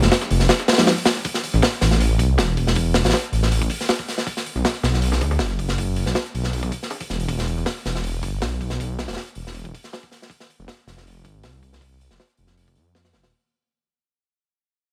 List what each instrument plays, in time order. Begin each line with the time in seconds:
0.02 detuned saw bass F1, snare
0.12 snare, open hi-hat
0.21 snare, closed hi-hat
0.30 detuned saw bass F1, snare, open hi-hat
0.40 snare, closed hi-hat
0.49 snare, closed hi-hat, open hi-hat
0.59 snare, closed hi-hat
0.68 snare, closed hi-hat, open hi-hat
0.72 snare, open hi-hat
0.78 tine electric piano F3 G#3 A#3 D#4 G4, snare, open hi-hat
0.87 snare, closed hi-hat, open hi-hat
0.97 open hi-hat
1.05 snare, open hi-hat
1.16 snare
1.25 kick, closed hi-hat, open hi-hat
1.34 snare, closed hi-hat
1.43 closed hi-hat, open hi-hat
1.54 detuned saw bass A1, snare
1.62 snare, closed hi-hat, open hi-hat
1.72 closed hi-hat
1.81 detuned saw bass A1, snare, closed hi-hat, open hi-hat
1.91 snare
2.00 closed hi-hat, open hi-hat
2.19 detuned saw bass C2, kick, closed hi-hat, open hi-hat
2.38 detuned saw bass E1, snare, closed hi-hat, open hi-hat
2.48 snare
2.57 kick, closed hi-hat, open hi-hat
2.67 snare
2.75 kick, closed hi-hat, open hi-hat
2.85 closed hi-hat
2.94 snare, closed hi-hat, open hi-hat
3.04 detuned saw bass A1, snare, open hi-hat
3.10 snare, open hi-hat
3.13 snare, closed hi-hat, open hi-hat
3.23 closed hi-hat
3.32 detuned saw bass A1, closed hi-hat, open hi-hat
3.43 snare
3.51 closed hi-hat, open hi-hat
3.61 kick, closed hi-hat
3.70 kick, closed hi-hat, open hi-hat
3.81 snare
3.89 snare, closed hi-hat, open hi-hat
3.99 kick
4.08 snare, closed hi-hat, open hi-hat
4.18 snare
4.27 kick, closed hi-hat, open hi-hat
4.37 snare, closed hi-hat
4.46 closed hi-hat, open hi-hat
4.55 detuned saw bass B1, snare
4.65 snare, closed hi-hat, open hi-hat
4.75 closed hi-hat
4.83 detuned saw bass B1, snare, closed hi-hat, open hi-hat
4.93 snare
5.02 closed hi-hat, open hi-hat
5.12 snare, closed hi-hat
5.21 detuned saw bass D2, kick, snare, closed hi-hat, open hi-hat
5.31 snare, closed hi-hat
5.39 detuned saw bass F#1, snare, open hi-hat
5.50 snare
5.59 kick, closed hi-hat, open hi-hat
5.69 snare
5.78 kick, closed hi-hat, open hi-hat
5.88 closed hi-hat
5.96 closed hi-hat, open hi-hat
6.06 detuned saw bass B1, snare
6.15 snare, open hi-hat
6.26 closed hi-hat
6.34 detuned saw bass B1, closed hi-hat, open hi-hat
6.44 snare
6.53 closed hi-hat, open hi-hat
6.63 kick, closed hi-hat
6.72 kick, closed hi-hat, open hi-hat
6.83 snare
6.90 snare, closed hi-hat, open hi-hat
7.00 kick, open hi-hat
7.10 detuned saw bass E1, snare, closed hi-hat
7.20 open hi-hat
7.28 kick, closed hi-hat, open hi-hat
7.38 snare, closed hi-hat
7.47 closed hi-hat, open hi-hat
7.57 detuned saw bass E1, snare
7.66 snare, closed hi-hat, open hi-hat
7.76 closed hi-hat
7.85 detuned saw bass E1, snare, closed hi-hat, open hi-hat
7.95 snare
8.04 closed hi-hat, open hi-hat
8.23 detuned saw bass G1, kick, closed hi-hat, open hi-hat
8.42 detuned saw bass B1, snare, open hi-hat
8.51 snare
8.60 kick, closed hi-hat, open hi-hat
8.70 snare
8.79 kick, closed hi-hat, open hi-hat
8.89 closed hi-hat
8.99 snare, open hi-hat
9.08 detuned saw bass E1, snare, open hi-hat
9.13 snare, open hi-hat
9.17 snare, open hi-hat
9.28 closed hi-hat
9.35 detuned saw bass E1, closed hi-hat, open hi-hat
9.47 snare
9.55 closed hi-hat, open hi-hat
9.65 kick, closed hi-hat
9.74 kick, closed hi-hat, open hi-hat
9.84 snare
9.93 snare, open hi-hat
10.03 kick
10.11 snare, closed hi-hat, open hi-hat
10.22 snare
10.30 kick, closed hi-hat, open hi-hat
10.40 snare, closed hi-hat
10.49 closed hi-hat, open hi-hat
10.59 detuned saw bass F1, snare
10.68 snare, open hi-hat
10.87 detuned saw bass F1, snare, closed hi-hat, open hi-hat
10.97 snare
11.06 closed hi-hat, open hi-hat
11.25 detuned saw bass G#1, kick, closed hi-hat, open hi-hat
11.43 detuned saw bass C2, snare, open hi-hat
11.63 kick, closed hi-hat, open hi-hat
11.73 snare
11.81 kick, closed hi-hat, open hi-hat
11.92 closed hi-hat
12.01 closed hi-hat, open hi-hat
12.10 detuned saw bass F1, snare
12.19 snare, open hi-hat
12.30 closed hi-hat
12.37 detuned saw bass F1, closed hi-hat, open hi-hat
12.47 snare
12.57 closed hi-hat, open hi-hat
12.68 kick
12.75 detuned saw bass F2, closed hi-hat, open hi-hat
12.95 snare, open hi-hat
13.05 snare, open hi-hat
13.13 detuned saw bass F1, snare, open hi-hat
13.23 detuned saw bass D#1, snare, open hi-hat